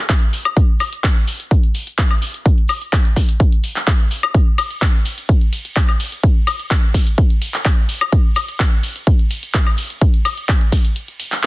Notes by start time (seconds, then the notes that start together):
0.09 kick, clap, closed hi-hat, shaker
0.33 open hi-hat, shaker
0.45 closed hi-hat, high woodblock, shaker
0.57 kick, closed hi-hat, shaker
0.80 open hi-hat, high woodblock, shaker
0.92 closed hi-hat, shaker
1.04 kick, clap, closed hi-hat, shaker
1.27 open hi-hat, shaker
1.40 closed hi-hat, shaker
1.51 kick, closed hi-hat, shaker
1.63 closed hi-hat
1.75 open hi-hat, shaker
1.87 closed hi-hat, shaker
1.98 kick, clap, closed hi-hat, shaker
2.11 high woodblock
2.22 open hi-hat, shaker
2.34 closed hi-hat, shaker
2.45 kick, closed hi-hat, shaker
2.58 closed hi-hat
2.68 open hi-hat, high woodblock, shaker
2.81 closed hi-hat, shaker
2.93 kick, clap, closed hi-hat, shaker
3.05 closed hi-hat
3.16 kick, open hi-hat, shaker
3.29 closed hi-hat, shaker
3.40 kick, closed hi-hat, shaker
3.52 closed hi-hat
3.64 open hi-hat, shaker
3.76 clap, closed hi-hat, shaker
3.87 kick, clap, closed hi-hat, shaker
4.11 open hi-hat, shaker
4.23 closed hi-hat, high woodblock, shaker
4.34 kick, closed hi-hat, shaker
4.58 open hi-hat, ride, high woodblock, shaker
4.70 closed hi-hat, shaker
4.82 kick, clap, closed hi-hat, shaker
5.05 open hi-hat, ride, shaker
5.18 closed hi-hat, shaker
5.29 kick, closed hi-hat, shaker
5.41 closed hi-hat
5.53 open hi-hat, ride, shaker
5.65 closed hi-hat, shaker
5.76 kick, clap, closed hi-hat, shaker
5.89 high woodblock
6.00 open hi-hat, ride, shaker
6.12 closed hi-hat, shaker
6.23 kick, closed hi-hat, shaker
6.47 open hi-hat, ride, high woodblock, shaker
6.59 closed hi-hat, shaker
6.70 kick, clap, closed hi-hat, shaker
6.94 kick, open hi-hat, ride, shaker
7.06 closed hi-hat, shaker
7.18 kick, closed hi-hat, shaker
7.30 closed hi-hat
7.42 open hi-hat, ride, shaker
7.53 clap, closed hi-hat, shaker
7.65 kick, clap, closed hi-hat, shaker
7.89 open hi-hat, ride, shaker
8.01 closed hi-hat, high woodblock, shaker
8.12 kick, closed hi-hat, shaker
8.35 open hi-hat, ride, high woodblock, shaker
8.48 closed hi-hat, shaker
8.60 kick, clap, closed hi-hat, shaker
8.83 open hi-hat, ride, shaker
8.96 closed hi-hat, shaker
9.07 kick, closed hi-hat, shaker
9.19 closed hi-hat
9.30 open hi-hat, ride, shaker
9.43 closed hi-hat, shaker
9.54 kick, clap, closed hi-hat, shaker
9.67 high woodblock
9.77 open hi-hat, ride, shaker
9.90 closed hi-hat, shaker
10.01 kick, closed hi-hat, shaker
10.14 closed hi-hat
10.25 open hi-hat, ride, high woodblock, shaker
10.37 closed hi-hat, shaker
10.48 kick, clap, closed hi-hat, shaker
10.61 closed hi-hat
10.72 kick, open hi-hat, ride, shaker
10.84 closed hi-hat, shaker
10.96 closed hi-hat, shaker
11.08 closed hi-hat
11.20 open hi-hat, ride, shaker
11.32 clap, closed hi-hat, shaker